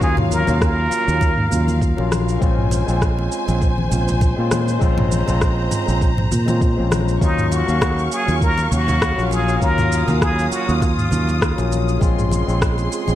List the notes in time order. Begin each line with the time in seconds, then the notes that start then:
Already playing: C#3 F#3 F5
0.00 D#2 F#3 A#3 C#4 F4 G#4, kick, cabasa
0.17 mid tom, muted conga, low conga
0.31 A#4, high conga, cabasa
0.46 D#2 F#3 A#3 C#4 F4, muted conga, low conga, cabasa
0.61 A#4, kick, cross-stick, cabasa
0.91 muted conga, cabasa
1.06 D#2 F#3 A#3 C#4 F4, cabasa
1.21 kick, muted conga, cabasa
1.38 mid tom
1.50 D#2 F#3 A#3 C#4 F4, high conga, low conga, cabasa
1.68 muted conga, high conga, cabasa
1.81 kick, cabasa
1.97 A#1 F#3 A#3 C#4 F4, muted conga
2.12 cross-stick, high conga, cabasa
2.29 cabasa
2.40 A#1 G#3 C4 C#4 F4 C5 G#5, kick, muted conga, cabasa
2.58 mid tom
2.71 muted conga, cabasa
2.86 A#1 G#3 C4 C#4 F4, cabasa
3.02 kick, cross-stick, cabasa
3.18 muted conga
3.32 cabasa
3.46 A#1 G#3 C4 C#4 F4, muted conga, cabasa
3.62 kick, cabasa
3.78 high conga
3.90 A#1 G#3 C4 C#4 F4, muted conga, low conga, cabasa
4.08 low conga, cabasa
4.21 kick, muted conga, cabasa
4.36 A#2 G#3 C4 C#4 F4
4.51 cross-stick, high conga, cabasa
4.68 muted conga, cabasa
4.79 A#1 G#3 C4 C#4 F4 A#5, kick, cabasa
4.98 mid tom, muted conga, low conga
5.12 high conga, cabasa
5.26 A#1 G#3 C4 C#4 F4, low conga, cabasa
5.41 kick, cross-stick, muted conga, cabasa
5.71 mid tom, muted conga, cabasa
5.86 A#1 G#3 C4 C#4 F4, cabasa
6.01 kick, cabasa
6.18 mid tom, muted conga
6.31 A#2, high conga, low conga, cabasa
6.46 G#3 C4 C#4 F4, muted conga, high conga, cabasa
6.61 kick, cabasa
6.76 A#1 G#3 C4 C#4 F4
6.92 cross-stick, muted conga, high conga, cabasa
7.09 cabasa
7.20 D#2 F#3 A#3 C#4 D#4 F4 F5 C#6, kick, cabasa
7.38 mid tom, cabasa
7.52 F#4, muted conga, cabasa
7.66 D#2 F#3 A#3 C#4 F5, cabasa
7.81 kick, cross-stick, muted conga, cabasa
7.99 cabasa
8.12 G#4, cabasa
8.26 D#2 F#3 A#3 C#4 F4, muted conga, cabasa
8.41 A#4, kick, cabasa
8.58 muted conga, cabasa
8.69 D#2 F#3 A#3 C#4 F#4, high conga, low conga, cabasa
8.74 F5
8.88 low conga, cabasa
9.01 kick, cross-stick, muted conga, cabasa
9.16 A#1 F#3 A#3 C#4 F4, cabasa
9.31 G#4, muted conga, high conga, cabasa
9.49 cabasa
9.60 D#2 F#3 A#3 C#4 F4 A#4 D#6, kick, cabasa
9.78 mid tom, muted conga, low conga, cabasa
9.92 cabasa
10.06 D#2 F#3 A#3 C#4 F4, muted conga, low conga, cabasa
10.22 G#4, kick, cross-stick, cabasa
10.39 cabasa
10.52 F#4, muted conga, cabasa
10.66 D#2 F#3 A#3 C#4 F4, cabasa
10.76 F#4
10.82 F4, kick, muted conga, cabasa
10.99 mid tom, cabasa
11.10 D#2 F#3 A#3 C#4 F4, high conga, low conga, cabasa
11.29 muted conga, cabasa
11.41 kick, cross-stick, cabasa
11.56 A#1 F#3 A#3 C#4 F4, muted conga, cabasa
11.71 high conga, cabasa
11.89 cabasa
12.00 A#1 G#3 C4 C#4 F4 G#4 C6, kick, muted conga, cabasa
12.19 mid tom, cabasa
12.32 muted conga, cabasa
12.46 A#1 G#3 C4 C#4 F4, cabasa
12.61 kick, cross-stick, cabasa
12.78 muted conga, cabasa
12.92 cabasa
13.07 A#1 G#3 C4 C#4 F4, muted conga, cabasa